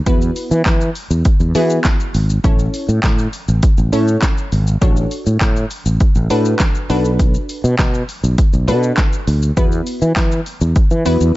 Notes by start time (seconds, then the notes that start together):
0.06 E2 B3 E4 F#4 B4, kick, closed hi-hat, shaker
0.21 shaker
0.36 open hi-hat, shaker
0.51 E3, shaker
0.66 E3, kick, snare, clap, closed hi-hat, shaker
0.81 shaker
0.95 open hi-hat, shaker
1.11 E2, shaker
1.25 kick, closed hi-hat, shaker
1.40 E2, shaker
1.55 E3 B3 E4 F#4 G#4, open hi-hat, shaker
1.70 shaker
1.85 kick, snare, clap, closed hi-hat, shaker
2.00 shaker
2.15 G#1, open hi-hat, shaker
2.30 shaker
2.44 A1 C#4 E4 A4 C#5, kick, closed hi-hat, shaker
2.59 shaker
2.74 open hi-hat, shaker
2.89 A2, shaker
3.04 A2, kick, snare, clap, closed hi-hat, shaker
3.18 shaker
3.33 open hi-hat, shaker
3.48 A1, shaker
3.63 kick, closed hi-hat, shaker
3.78 A1, shaker
3.93 A2 C#4 E4 A4 C#5, open hi-hat, shaker
4.08 shaker
4.22 kick, snare, clap, closed hi-hat, shaker
4.38 shaker
4.52 G#1, open hi-hat, shaker
4.67 shaker
4.81 A1 D4 F#4 A4 C#5, kick, closed hi-hat, shaker
4.97 shaker
5.11 open hi-hat, shaker
5.26 A2, shaker
5.41 A2, kick, snare, clap, closed hi-hat, shaker
5.56 shaker
5.71 open hi-hat, shaker
5.86 A1, shaker
6.00 kick, closed hi-hat, shaker
6.15 A1, shaker
6.30 A2 D4 F#4 A4 B4, open hi-hat, shaker
6.45 shaker
6.60 kick, snare, clap, closed hi-hat, shaker
6.75 shaker
6.90 B1 D4 F#4 A4 B4, open hi-hat, shaker
7.05 shaker
7.19 kick, closed hi-hat, shaker
7.34 shaker
7.49 open hi-hat, shaker
7.64 B2, shaker
7.79 B2, kick, snare, clap, closed hi-hat, shaker
7.94 shaker
8.09 open hi-hat, shaker
8.24 B1, shaker
8.38 kick, closed hi-hat, shaker
8.53 B1, shaker
8.68 B2 D4 F#4 A4 B4, open hi-hat, shaker
8.83 shaker
8.98 kick, snare, clap, closed hi-hat, shaker
9.13 shaker
9.27 D2, open hi-hat, shaker
9.42 shaker
9.57 E2 B3 E4 F#4 B4, kick, closed hi-hat, shaker
9.72 shaker
9.87 open hi-hat, shaker
10.02 E3, shaker
10.17 E3, kick, snare, clap, closed hi-hat, shaker
10.32 shaker
10.46 open hi-hat, shaker
10.61 E2, shaker
10.76 kick, closed hi-hat, shaker
10.91 E3, shaker
11.05 E2 B3 E4 F#4 B4, open hi-hat, shaker
11.21 E2, shaker